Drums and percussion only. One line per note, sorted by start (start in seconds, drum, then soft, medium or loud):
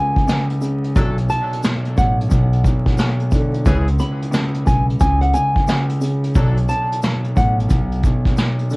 0.16 kick medium
0.16 closed hi-hat medium
0.28 snare loud
0.28 shaker medium
0.50 closed hi-hat medium
0.62 closed hi-hat medium
0.62 shaker soft
0.84 closed hi-hat medium
0.96 kick loud
0.96 closed hi-hat medium
0.96 shaker medium
1.18 closed hi-hat medium
1.29 closed hi-hat medium
1.29 shaker soft
1.53 closed hi-hat medium
1.63 snare loud
1.63 shaker medium
1.85 closed hi-hat medium
1.97 kick medium
1.97 closed hi-hat medium
1.97 shaker medium
2.21 closed hi-hat medium
2.31 kick loud
2.31 closed hi-hat medium
2.31 shaker medium
2.53 closed hi-hat soft
2.64 kick medium
2.64 closed hi-hat medium
2.64 shaker medium
2.86 kick medium
2.86 snare soft
2.86 closed hi-hat medium
2.98 snare loud
2.98 shaker medium
3.20 closed hi-hat medium
3.31 kick loud
3.31 closed hi-hat medium
3.31 shaker soft
3.54 closed hi-hat medium
3.66 kick loud
3.66 closed hi-hat medium
3.66 shaker medium
3.87 closed hi-hat medium
3.99 closed hi-hat medium
3.99 shaker soft
4.22 closed hi-hat medium
4.33 snare loud
4.33 shaker medium
4.54 closed hi-hat medium
4.67 kick medium
4.67 closed hi-hat medium
4.67 shaker medium
4.90 closed hi-hat medium
5.00 kick loud
5.00 closed hi-hat medium
5.00 shaker medium
5.22 closed hi-hat soft
5.33 closed hi-hat medium
5.33 shaker medium
5.56 kick medium
5.56 closed hi-hat medium
5.68 snare loud
5.68 shaker medium
5.89 closed hi-hat medium
6.01 closed hi-hat medium
6.01 shaker soft
6.24 closed hi-hat medium
6.35 kick loud
6.35 closed hi-hat medium
6.35 shaker medium
6.57 closed hi-hat medium
6.69 closed hi-hat medium
6.69 shaker soft
6.92 closed hi-hat medium
7.02 snare loud
7.02 shaker medium
7.24 closed hi-hat medium
7.37 kick medium
7.37 closed hi-hat medium
7.37 shaker medium
7.60 closed hi-hat medium
7.70 kick loud
7.70 closed hi-hat loud
7.70 shaker medium
7.92 closed hi-hat soft
8.03 kick medium
8.03 closed hi-hat medium
8.03 shaker medium
8.25 kick medium
8.25 snare soft
8.25 closed hi-hat medium
8.37 snare loud
8.37 shaker medium
8.59 closed hi-hat medium
8.70 closed hi-hat medium
8.70 shaker soft